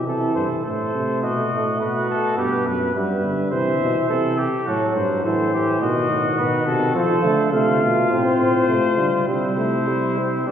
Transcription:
0.06 bass trombone C3, euphonium E3, cornet A4, trumpet A4
0.35 bass trombone G2, cornet C5
0.64 bass trombone A2, euphonium A3, trumpet A4, cornet C5
0.94 bass trombone C3
1.22 bass trombone B2, trumpet F#4, cornet D#5
1.52 bass trombone A2
1.80 bass trombone B2, trumpet F#4, cornet B4
2.09 cornet A4
2.38 bass trombone G2, euphonium B3, trumpet G4, cornet B4
2.66 bass trombone F#2, trumpet B4
2.95 bass trombone G2, euphonium G3, trumpet B4, cornet E5
3.24 bass trombone D3
3.51 bass trombone C3, euphonium E3, trumpet C5, cornet E5
3.81 bass trombone B2
4.09 bass trombone C3, euphonium E3, trumpet A4
4.38 trumpet G4
4.66 bass trombone A2, euphonium F#3, trumpet F#4, cornet A4
4.96 bass trombone G2, cornet C5
5.24 bass trombone A2, euphonium E3, trumpet A4, cornet C5
5.53 trumpet G4
5.81 bass trombone B2, euphonium D#3, trumpet F#4, cornet D#5
6.10 bass trombone A2
6.38 bass trombone B2, cornet B4
6.66 bass trombone C3, cornet A4
6.95 bass trombone F3, euphonium F3, trumpet A4, cornet C5
7.24 bass trombone D3, euphonium A3
7.53 bass trombone C3, euphonium A3, trumpet F4, cornet F5
7.81 bass trombone B2
8.11 bass trombone A2, euphonium C4, cornet C5
8.40 bass trombone A2
8.68 bass trombone C3, euphonium A3
8.98 bass trombone D3, euphonium G3
9.27 bass trombone C3, euphonium G3, trumpet E4, cornet C5
9.57 euphonium A3
9.87 euphonium G3
10.18 euphonium C4
10.47 bass trombone G3, euphonium B3, trumpet D4, cornet D5

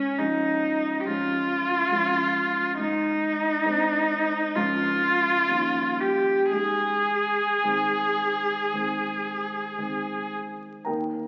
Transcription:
Already playing: grand piano G#2, cello C#4
0.18 grand piano F3 G#3 C#4, cello D#4
1.00 cello G4
1.06 grand piano F3 G#3 C#4, cello F4
1.91 grand piano F3 G#3 C#4
2.78 grand piano G#2, cello D#4
3.65 grand piano G#3 C4
4.55 grand piano C#2 F3 G#3 C#4, cello F4
5.48 grand piano D#2 F3 G3 C#4
6.00 cello G4
6.51 grand piano G#2, cello G#4
7.64 grand piano D#3 G#3 C4
8.73 grand piano D#3 G#3 C4
9.78 grand piano D#3 G#3 C4
10.85 grand piano D#2 A#4 G5 A#5

